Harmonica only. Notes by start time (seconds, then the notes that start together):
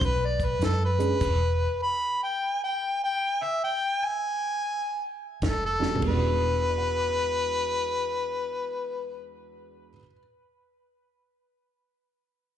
0.05 B4
0.26 D5
0.45 B4
0.65 A4
0.85 B4
1.83 B5
2.24 G5
2.63 G5
3.04 G5
3.43 E5
3.64 G5
4.05 G#5
5.46 A4
5.66 A4
6.08 B4